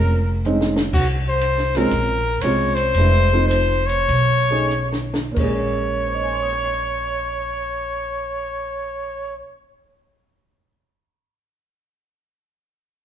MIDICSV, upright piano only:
0, 0, Header, 1, 2, 480
1, 0, Start_track
1, 0, Key_signature, -5, "minor"
1, 0, Tempo, 493016
1, 904, Time_signature, 4, 2, 24, 8
1, 2359, Tempo, 539568
1, 3319, Tempo, 600000
1, 4279, Tempo, 689655
1, 10084, End_track
2, 0, Start_track
2, 0, Title_t, "Upright piano"
2, 0, Program_c, 0, 0
2, 445, Note_on_c, 0, 60, 57
2, 446, Note_on_c, 0, 56, 58
2, 447, Note_on_c, 0, 61, 55
2, 449, Note_on_c, 0, 63, 68
2, 722, Note_off_c, 0, 56, 0
2, 722, Note_off_c, 0, 60, 0
2, 723, Note_off_c, 0, 61, 0
2, 724, Note_off_c, 0, 63, 0
2, 1718, Note_on_c, 0, 56, 77
2, 1721, Note_on_c, 0, 61, 64
2, 1724, Note_on_c, 0, 60, 73
2, 1724, Note_on_c, 0, 65, 85
2, 1855, Note_off_c, 0, 56, 0
2, 1857, Note_off_c, 0, 61, 0
2, 1859, Note_off_c, 0, 60, 0
2, 1859, Note_off_c, 0, 65, 0
2, 2372, Note_on_c, 0, 56, 60
2, 2375, Note_on_c, 0, 61, 49
2, 2376, Note_on_c, 0, 60, 56
2, 2377, Note_on_c, 0, 65, 66
2, 2645, Note_off_c, 0, 56, 0
2, 2646, Note_off_c, 0, 61, 0
2, 2647, Note_off_c, 0, 60, 0
2, 2647, Note_off_c, 0, 65, 0
2, 2850, Note_on_c, 0, 62, 52
2, 2854, Note_on_c, 0, 56, 52
2, 2855, Note_on_c, 0, 59, 56
2, 2860, Note_on_c, 0, 64, 64
2, 3130, Note_off_c, 0, 62, 0
2, 3132, Note_off_c, 0, 56, 0
2, 3133, Note_off_c, 0, 59, 0
2, 3135, Note_off_c, 0, 64, 0
2, 3165, Note_on_c, 0, 57, 54
2, 3170, Note_on_c, 0, 60, 47
2, 3174, Note_on_c, 0, 63, 53
2, 3174, Note_on_c, 0, 65, 59
2, 3569, Note_off_c, 0, 57, 0
2, 3571, Note_off_c, 0, 60, 0
2, 3573, Note_off_c, 0, 63, 0
2, 3573, Note_off_c, 0, 65, 0
2, 4122, Note_on_c, 0, 57, 53
2, 4131, Note_on_c, 0, 61, 51
2, 4131, Note_on_c, 0, 63, 51
2, 4133, Note_on_c, 0, 68, 71
2, 4268, Note_off_c, 0, 57, 0
2, 4272, Note_off_c, 0, 61, 0
2, 4272, Note_off_c, 0, 63, 0
2, 4273, Note_off_c, 0, 68, 0
2, 4706, Note_on_c, 0, 46, 59
2, 4726, Note_on_c, 0, 58, 58
2, 4748, Note_on_c, 0, 56, 55
2, 4763, Note_on_c, 0, 61, 57
2, 4787, Note_on_c, 0, 68, 64
2, 5232, Note_on_c, 0, 72, 40
2, 5283, Note_on_c, 0, 75, 37
2, 5346, Note_on_c, 0, 80, 38
2, 5404, Note_on_c, 0, 84, 36
2, 5475, Note_on_c, 0, 87, 35
2, 5548, Note_on_c, 0, 92, 31
2, 5630, Note_on_c, 0, 96, 31
2, 7542, Note_off_c, 0, 46, 0
2, 7562, Note_off_c, 0, 58, 0
2, 7583, Note_off_c, 0, 56, 0
2, 7599, Note_off_c, 0, 61, 0
2, 7623, Note_off_c, 0, 68, 0
2, 8039, Note_off_c, 0, 72, 0
2, 8091, Note_off_c, 0, 75, 0
2, 8154, Note_off_c, 0, 80, 0
2, 8212, Note_off_c, 0, 84, 0
2, 8283, Note_off_c, 0, 87, 0
2, 8356, Note_off_c, 0, 92, 0
2, 8437, Note_off_c, 0, 96, 0
2, 10084, End_track
0, 0, End_of_file